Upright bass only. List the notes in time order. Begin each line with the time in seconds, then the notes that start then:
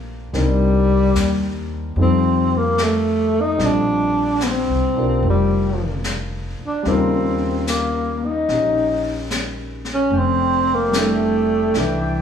Already playing: A#1
0.33 C2
1.15 D#2
1.96 F2
3.59 A#1
4.69 C2
4.95 B1
5.22 F1
6.59 muted upright bass stroke
6.85 D#2
8.49 A#1
10.11 F1
11.74 C2